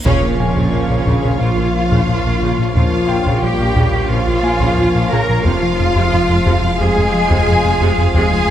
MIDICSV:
0, 0, Header, 1, 13, 480
1, 0, Start_track
1, 0, Tempo, 674157
1, 39, Time_signature, 4, 2, 24, 8
1, 6055, End_track
2, 0, Start_track
2, 0, Title_t, "Grand piano"
2, 0, Program_c, 0, 0
2, 0, Control_c, 0, 64, 127
2, 54, Control_c, 0, 64, 0
2, 167, Control_c, 0, 64, 127
2, 285, Note_on_c, 0, 80, 34
2, 1694, Note_off_c, 0, 80, 0
2, 2191, Note_on_c, 0, 65, 34
2, 2197, Note_on_c, 0, 79, 44
2, 3160, Note_on_c, 0, 80, 43
2, 3607, Note_off_c, 0, 65, 0
2, 3610, Note_off_c, 0, 79, 0
2, 3893, Control_c, 0, 64, 0
2, 4004, Control_c, 0, 64, 127
2, 4571, Note_off_c, 0, 80, 0
2, 6055, End_track
3, 0, Start_track
3, 0, Title_t, "Violin section"
3, 0, Program_c, 1, 48
3, 44, Note_on_c, 1, 73, 73
3, 973, Note_off_c, 1, 73, 0
3, 997, Note_on_c, 1, 77, 61
3, 1947, Note_off_c, 1, 77, 0
3, 1956, Note_on_c, 1, 77, 59
3, 2428, Note_off_c, 1, 77, 0
3, 2441, Note_on_c, 1, 79, 62
3, 2911, Note_off_c, 1, 79, 0
3, 2924, Note_on_c, 1, 77, 63
3, 3627, Note_off_c, 1, 77, 0
3, 3650, Note_on_c, 1, 82, 66
3, 3884, Note_off_c, 1, 82, 0
3, 3886, Note_on_c, 1, 77, 72
3, 4823, Note_off_c, 1, 77, 0
3, 4847, Note_on_c, 1, 80, 83
3, 5802, Note_off_c, 1, 80, 0
3, 5810, Note_on_c, 1, 80, 85
3, 6055, Note_off_c, 1, 80, 0
3, 6055, End_track
4, 0, Start_track
4, 0, Title_t, "Violin section"
4, 0, Program_c, 2, 48
4, 41, Note_on_c, 2, 77, 57
4, 3852, Note_off_c, 2, 77, 0
4, 3872, Note_on_c, 2, 77, 56
4, 6055, Note_off_c, 2, 77, 0
4, 6055, End_track
5, 0, Start_track
5, 0, Title_t, "Cello section"
5, 0, Program_c, 3, 48
5, 37, Note_on_c, 3, 61, 81
5, 970, Note_off_c, 3, 61, 0
5, 994, Note_on_c, 3, 65, 68
5, 1937, Note_off_c, 3, 65, 0
5, 1960, Note_on_c, 3, 65, 71
5, 2430, Note_off_c, 3, 65, 0
5, 2432, Note_on_c, 3, 67, 68
5, 2914, Note_on_c, 3, 65, 78
5, 2916, Note_off_c, 3, 67, 0
5, 3631, Note_on_c, 3, 70, 76
5, 3637, Note_off_c, 3, 65, 0
5, 3868, Note_on_c, 3, 65, 86
5, 3875, Note_off_c, 3, 70, 0
5, 4834, Note_off_c, 3, 65, 0
5, 4838, Note_on_c, 3, 68, 92
5, 5780, Note_off_c, 3, 68, 0
5, 5793, Note_on_c, 3, 68, 96
5, 6055, Note_off_c, 3, 68, 0
5, 6055, End_track
6, 0, Start_track
6, 0, Title_t, "Analog synth pad"
6, 0, Program_c, 4, 89
6, 36, Note_on_c, 4, 73, 74
6, 37, Note_on_c, 4, 58, 76
6, 38, Note_on_c, 4, 53, 75
6, 39, Note_on_c, 4, 65, 74
6, 3849, Note_off_c, 4, 73, 0
6, 3850, Note_off_c, 4, 53, 0
6, 3850, Note_off_c, 4, 58, 0
6, 3851, Note_off_c, 4, 65, 0
6, 3873, Note_on_c, 4, 65, 68
6, 3875, Note_on_c, 4, 53, 66
6, 3876, Note_on_c, 4, 72, 70
6, 3877, Note_on_c, 4, 56, 68
6, 6055, Note_off_c, 4, 53, 0
6, 6055, Note_off_c, 4, 56, 0
6, 6055, Note_off_c, 4, 65, 0
6, 6055, Note_off_c, 4, 72, 0
6, 6055, End_track
7, 0, Start_track
7, 0, Title_t, "French horn section"
7, 0, Program_c, 5, 60
7, 47, Note_on_c, 5, 49, 77
7, 975, Note_off_c, 5, 49, 0
7, 989, Note_on_c, 5, 53, 61
7, 1954, Note_off_c, 5, 53, 0
7, 1962, Note_on_c, 5, 53, 67
7, 2431, Note_off_c, 5, 53, 0
7, 2443, Note_on_c, 5, 55, 61
7, 2918, Note_on_c, 5, 53, 67
7, 2921, Note_off_c, 5, 55, 0
7, 3639, Note_off_c, 5, 53, 0
7, 3642, Note_on_c, 5, 58, 68
7, 3872, Note_on_c, 5, 53, 77
7, 3881, Note_off_c, 5, 58, 0
7, 4836, Note_off_c, 5, 53, 0
7, 4838, Note_on_c, 5, 56, 87
7, 5678, Note_off_c, 5, 56, 0
7, 5799, Note_on_c, 5, 56, 85
7, 6055, Note_off_c, 5, 56, 0
7, 6055, End_track
8, 0, Start_track
8, 0, Title_t, "Viola section"
8, 0, Program_c, 6, 48
8, 42, Note_on_c, 6, 49, 75
8, 42, Note_on_c, 6, 65, 61
8, 152, Note_off_c, 6, 49, 0
8, 286, Note_on_c, 6, 58, 40
8, 332, Note_off_c, 6, 58, 0
8, 401, Note_on_c, 6, 49, 47
8, 512, Note_off_c, 6, 49, 0
8, 523, Note_on_c, 6, 53, 39
8, 570, Note_off_c, 6, 53, 0
8, 641, Note_on_c, 6, 58, 44
8, 689, Note_off_c, 6, 58, 0
8, 761, Note_on_c, 6, 49, 54
8, 872, Note_off_c, 6, 49, 0
8, 879, Note_on_c, 6, 53, 39
8, 927, Note_off_c, 6, 53, 0
8, 1009, Note_on_c, 6, 49, 51
8, 1116, Note_off_c, 6, 49, 0
8, 1123, Note_on_c, 6, 53, 41
8, 1170, Note_off_c, 6, 53, 0
8, 1361, Note_on_c, 6, 49, 54
8, 1472, Note_off_c, 6, 49, 0
8, 1487, Note_on_c, 6, 53, 44
8, 1533, Note_off_c, 6, 53, 0
8, 1609, Note_on_c, 6, 58, 42
8, 1655, Note_off_c, 6, 58, 0
8, 1725, Note_on_c, 6, 49, 53
8, 1834, Note_off_c, 6, 49, 0
8, 1848, Note_on_c, 6, 53, 49
8, 1894, Note_off_c, 6, 53, 0
8, 1965, Note_on_c, 6, 49, 55
8, 2074, Note_off_c, 6, 49, 0
8, 2208, Note_on_c, 6, 58, 43
8, 2255, Note_off_c, 6, 58, 0
8, 2328, Note_on_c, 6, 49, 59
8, 2435, Note_off_c, 6, 49, 0
8, 2451, Note_on_c, 6, 53, 46
8, 2497, Note_off_c, 6, 53, 0
8, 2570, Note_on_c, 6, 58, 46
8, 2616, Note_off_c, 6, 58, 0
8, 2688, Note_on_c, 6, 49, 57
8, 2795, Note_off_c, 6, 49, 0
8, 2805, Note_on_c, 6, 53, 42
8, 2852, Note_off_c, 6, 53, 0
8, 2931, Note_on_c, 6, 49, 57
8, 3037, Note_off_c, 6, 49, 0
8, 3048, Note_on_c, 6, 53, 46
8, 3094, Note_off_c, 6, 53, 0
8, 3285, Note_on_c, 6, 49, 62
8, 3394, Note_off_c, 6, 49, 0
8, 3408, Note_on_c, 6, 53, 54
8, 3454, Note_off_c, 6, 53, 0
8, 3526, Note_on_c, 6, 58, 46
8, 3572, Note_off_c, 6, 58, 0
8, 3645, Note_on_c, 6, 49, 73
8, 3754, Note_off_c, 6, 49, 0
8, 3768, Note_on_c, 6, 53, 54
8, 3814, Note_off_c, 6, 53, 0
8, 3852, Note_off_c, 6, 65, 0
8, 3888, Note_on_c, 6, 65, 63
8, 3889, Note_on_c, 6, 48, 69
8, 3996, Note_off_c, 6, 48, 0
8, 4128, Note_on_c, 6, 56, 50
8, 4174, Note_off_c, 6, 56, 0
8, 4245, Note_on_c, 6, 48, 67
8, 4354, Note_off_c, 6, 48, 0
8, 4362, Note_on_c, 6, 53, 52
8, 4409, Note_off_c, 6, 53, 0
8, 4480, Note_on_c, 6, 56, 52
8, 4528, Note_off_c, 6, 56, 0
8, 4598, Note_on_c, 6, 48, 66
8, 4710, Note_off_c, 6, 48, 0
8, 4723, Note_on_c, 6, 53, 50
8, 4770, Note_off_c, 6, 53, 0
8, 4840, Note_on_c, 6, 48, 64
8, 4951, Note_off_c, 6, 48, 0
8, 4957, Note_on_c, 6, 53, 53
8, 5005, Note_off_c, 6, 53, 0
8, 5198, Note_on_c, 6, 48, 72
8, 5310, Note_off_c, 6, 48, 0
8, 5320, Note_on_c, 6, 53, 63
8, 5368, Note_off_c, 6, 53, 0
8, 5443, Note_on_c, 6, 56, 54
8, 5491, Note_off_c, 6, 56, 0
8, 5561, Note_on_c, 6, 48, 83
8, 5672, Note_off_c, 6, 48, 0
8, 5685, Note_on_c, 6, 53, 62
8, 5732, Note_off_c, 6, 53, 0
8, 5800, Note_on_c, 6, 48, 74
8, 5911, Note_off_c, 6, 48, 0
8, 6055, Note_off_c, 6, 65, 0
8, 6055, End_track
9, 0, Start_track
9, 0, Title_t, "Analog synth bass"
9, 0, Program_c, 7, 38
9, 44, Note_on_c, 7, 46, 101
9, 114, Note_off_c, 7, 46, 0
9, 163, Note_on_c, 7, 58, 52
9, 234, Note_off_c, 7, 58, 0
9, 283, Note_on_c, 7, 46, 54
9, 354, Note_off_c, 7, 46, 0
9, 401, Note_on_c, 7, 46, 73
9, 473, Note_off_c, 7, 46, 0
9, 522, Note_on_c, 7, 46, 53
9, 593, Note_off_c, 7, 46, 0
9, 642, Note_on_c, 7, 46, 51
9, 713, Note_off_c, 7, 46, 0
9, 757, Note_on_c, 7, 46, 79
9, 830, Note_off_c, 7, 46, 0
9, 881, Note_on_c, 7, 46, 53
9, 952, Note_off_c, 7, 46, 0
9, 1000, Note_on_c, 7, 46, 72
9, 1072, Note_off_c, 7, 46, 0
9, 1127, Note_on_c, 7, 46, 51
9, 1196, Note_off_c, 7, 46, 0
9, 1243, Note_on_c, 7, 58, 52
9, 1314, Note_off_c, 7, 58, 0
9, 1365, Note_on_c, 7, 46, 72
9, 1435, Note_off_c, 7, 46, 0
9, 1492, Note_on_c, 7, 46, 53
9, 1560, Note_off_c, 7, 46, 0
9, 1608, Note_on_c, 7, 46, 50
9, 1678, Note_off_c, 7, 46, 0
9, 1727, Note_on_c, 7, 46, 78
9, 1796, Note_off_c, 7, 46, 0
9, 1849, Note_on_c, 7, 46, 55
9, 1918, Note_off_c, 7, 46, 0
9, 1960, Note_on_c, 7, 46, 77
9, 2031, Note_off_c, 7, 46, 0
9, 2081, Note_on_c, 7, 58, 55
9, 2153, Note_off_c, 7, 58, 0
9, 2201, Note_on_c, 7, 46, 53
9, 2273, Note_off_c, 7, 46, 0
9, 2329, Note_on_c, 7, 46, 78
9, 2398, Note_off_c, 7, 46, 0
9, 2443, Note_on_c, 7, 46, 57
9, 2514, Note_off_c, 7, 46, 0
9, 2565, Note_on_c, 7, 46, 56
9, 2636, Note_off_c, 7, 46, 0
9, 2679, Note_on_c, 7, 46, 87
9, 2751, Note_off_c, 7, 46, 0
9, 2795, Note_on_c, 7, 46, 57
9, 2868, Note_off_c, 7, 46, 0
9, 2916, Note_on_c, 7, 46, 81
9, 2989, Note_off_c, 7, 46, 0
9, 3045, Note_on_c, 7, 46, 52
9, 3115, Note_off_c, 7, 46, 0
9, 3155, Note_on_c, 7, 58, 56
9, 3229, Note_off_c, 7, 58, 0
9, 3278, Note_on_c, 7, 46, 79
9, 3350, Note_off_c, 7, 46, 0
9, 3405, Note_on_c, 7, 46, 57
9, 3476, Note_off_c, 7, 46, 0
9, 3526, Note_on_c, 7, 46, 59
9, 3596, Note_off_c, 7, 46, 0
9, 3650, Note_on_c, 7, 46, 88
9, 3719, Note_off_c, 7, 46, 0
9, 3769, Note_on_c, 7, 46, 58
9, 3838, Note_off_c, 7, 46, 0
9, 3887, Note_on_c, 7, 41, 82
9, 3956, Note_off_c, 7, 41, 0
9, 4007, Note_on_c, 7, 53, 61
9, 4077, Note_off_c, 7, 53, 0
9, 4130, Note_on_c, 7, 41, 61
9, 4199, Note_off_c, 7, 41, 0
9, 4241, Note_on_c, 7, 41, 82
9, 4313, Note_off_c, 7, 41, 0
9, 4362, Note_on_c, 7, 41, 57
9, 4433, Note_off_c, 7, 41, 0
9, 4480, Note_on_c, 7, 41, 57
9, 4552, Note_off_c, 7, 41, 0
9, 4603, Note_on_c, 7, 41, 86
9, 4674, Note_off_c, 7, 41, 0
9, 4717, Note_on_c, 7, 41, 60
9, 4790, Note_off_c, 7, 41, 0
9, 4846, Note_on_c, 7, 41, 83
9, 4916, Note_off_c, 7, 41, 0
9, 4965, Note_on_c, 7, 41, 58
9, 5035, Note_off_c, 7, 41, 0
9, 5082, Note_on_c, 7, 53, 60
9, 5153, Note_off_c, 7, 53, 0
9, 5202, Note_on_c, 7, 41, 84
9, 5273, Note_off_c, 7, 41, 0
9, 5319, Note_on_c, 7, 41, 60
9, 5391, Note_off_c, 7, 41, 0
9, 5442, Note_on_c, 7, 41, 62
9, 5513, Note_off_c, 7, 41, 0
9, 5562, Note_on_c, 7, 41, 95
9, 5633, Note_off_c, 7, 41, 0
9, 5679, Note_on_c, 7, 41, 64
9, 5751, Note_off_c, 7, 41, 0
9, 5799, Note_on_c, 7, 41, 92
9, 5871, Note_off_c, 7, 41, 0
9, 5917, Note_on_c, 7, 53, 65
9, 5990, Note_off_c, 7, 53, 0
9, 6055, End_track
10, 0, Start_track
10, 0, Title_t, "Double bass section"
10, 0, Program_c, 8, 48
10, 42, Note_on_c, 8, 34, 82
10, 152, Note_off_c, 8, 34, 0
10, 282, Note_on_c, 8, 34, 38
10, 330, Note_off_c, 8, 34, 0
10, 401, Note_on_c, 8, 34, 58
10, 449, Note_off_c, 8, 34, 0
10, 522, Note_on_c, 8, 34, 40
10, 569, Note_off_c, 8, 34, 0
10, 636, Note_on_c, 8, 34, 40
10, 684, Note_off_c, 8, 34, 0
10, 758, Note_on_c, 8, 34, 53
10, 806, Note_off_c, 8, 34, 0
10, 873, Note_on_c, 8, 34, 36
10, 922, Note_off_c, 8, 34, 0
10, 992, Note_on_c, 8, 34, 59
10, 1041, Note_off_c, 8, 34, 0
10, 1109, Note_on_c, 8, 34, 41
10, 1159, Note_off_c, 8, 34, 0
10, 1352, Note_on_c, 8, 34, 60
10, 1402, Note_off_c, 8, 34, 0
10, 1471, Note_on_c, 8, 34, 40
10, 1521, Note_off_c, 8, 34, 0
10, 1592, Note_on_c, 8, 34, 42
10, 1641, Note_off_c, 8, 34, 0
10, 1712, Note_on_c, 8, 34, 63
10, 1761, Note_off_c, 8, 34, 0
10, 1830, Note_on_c, 8, 34, 43
10, 1880, Note_off_c, 8, 34, 0
10, 1954, Note_on_c, 8, 34, 63
10, 2003, Note_off_c, 8, 34, 0
10, 2188, Note_on_c, 8, 34, 44
10, 2239, Note_off_c, 8, 34, 0
10, 2310, Note_on_c, 8, 34, 60
10, 2360, Note_off_c, 8, 34, 0
10, 2429, Note_on_c, 8, 34, 45
10, 2479, Note_off_c, 8, 34, 0
10, 2551, Note_on_c, 8, 34, 48
10, 2601, Note_off_c, 8, 34, 0
10, 2669, Note_on_c, 8, 34, 61
10, 2719, Note_off_c, 8, 34, 0
10, 2793, Note_on_c, 8, 34, 42
10, 2842, Note_off_c, 8, 34, 0
10, 2910, Note_on_c, 8, 34, 63
10, 2960, Note_off_c, 8, 34, 0
10, 3038, Note_on_c, 8, 34, 47
10, 3086, Note_off_c, 8, 34, 0
10, 3276, Note_on_c, 8, 34, 66
10, 3325, Note_off_c, 8, 34, 0
10, 3396, Note_on_c, 8, 34, 46
10, 3445, Note_off_c, 8, 34, 0
10, 3512, Note_on_c, 8, 34, 47
10, 3562, Note_off_c, 8, 34, 0
10, 3636, Note_on_c, 8, 34, 66
10, 3685, Note_off_c, 8, 34, 0
10, 3759, Note_on_c, 8, 34, 46
10, 3807, Note_off_c, 8, 34, 0
10, 3876, Note_on_c, 8, 41, 75
10, 3925, Note_off_c, 8, 41, 0
10, 4118, Note_on_c, 8, 41, 50
10, 4166, Note_off_c, 8, 41, 0
10, 4245, Note_on_c, 8, 41, 75
10, 4292, Note_off_c, 8, 41, 0
10, 4362, Note_on_c, 8, 41, 49
10, 4410, Note_off_c, 8, 41, 0
10, 4484, Note_on_c, 8, 41, 54
10, 4531, Note_off_c, 8, 41, 0
10, 4603, Note_on_c, 8, 41, 73
10, 4650, Note_off_c, 8, 41, 0
10, 4719, Note_on_c, 8, 41, 50
10, 4767, Note_off_c, 8, 41, 0
10, 4836, Note_on_c, 8, 41, 79
10, 4884, Note_off_c, 8, 41, 0
10, 4961, Note_on_c, 8, 41, 50
10, 5008, Note_off_c, 8, 41, 0
10, 5203, Note_on_c, 8, 41, 80
10, 5250, Note_off_c, 8, 41, 0
10, 5330, Note_on_c, 8, 41, 54
10, 5376, Note_off_c, 8, 41, 0
10, 5445, Note_on_c, 8, 41, 52
10, 5492, Note_off_c, 8, 41, 0
10, 5564, Note_on_c, 8, 41, 77
10, 5611, Note_off_c, 8, 41, 0
10, 5689, Note_on_c, 8, 41, 54
10, 5735, Note_off_c, 8, 41, 0
10, 5803, Note_on_c, 8, 41, 78
10, 5850, Note_off_c, 8, 41, 0
10, 6055, End_track
11, 0, Start_track
11, 0, Title_t, "Detuned saw bass"
11, 0, Program_c, 10, 39
11, 41, Note_on_c, 10, 34, 55
11, 3882, Note_on_c, 10, 29, 61
11, 3893, Note_off_c, 10, 34, 0
11, 6055, Note_off_c, 10, 29, 0
11, 6055, End_track
12, 0, Start_track
12, 0, Title_t, "Impact"
12, 0, Program_c, 11, 103
12, 41, Note_on_c, 11, 60, 56
12, 1960, Note_off_c, 11, 60, 0
12, 6055, End_track
13, 0, Start_track
13, 0, Title_t, "Taiko and cinematic ensemble drums"
13, 43, Note_on_c, 9, 41, 80
13, 114, Note_off_c, 9, 41, 0
13, 401, Note_on_c, 9, 41, 67
13, 472, Note_off_c, 9, 41, 0
13, 762, Note_on_c, 9, 41, 69
13, 834, Note_off_c, 9, 41, 0
13, 1364, Note_on_c, 9, 41, 70
13, 1435, Note_off_c, 9, 41, 0
13, 1963, Note_on_c, 9, 41, 83
13, 2034, Note_off_c, 9, 41, 0
13, 2319, Note_on_c, 9, 41, 69
13, 2390, Note_off_c, 9, 41, 0
13, 2680, Note_on_c, 9, 41, 66
13, 2751, Note_off_c, 9, 41, 0
13, 3278, Note_on_c, 9, 41, 75
13, 3350, Note_off_c, 9, 41, 0
13, 3878, Note_on_c, 9, 41, 88
13, 3949, Note_off_c, 9, 41, 0
13, 4243, Note_on_c, 9, 41, 72
13, 4314, Note_off_c, 9, 41, 0
13, 4604, Note_on_c, 9, 41, 77
13, 4675, Note_off_c, 9, 41, 0
13, 5203, Note_on_c, 9, 41, 72
13, 5274, Note_off_c, 9, 41, 0
13, 5800, Note_on_c, 9, 41, 86
13, 5872, Note_off_c, 9, 41, 0
13, 6055, End_track
0, 0, End_of_file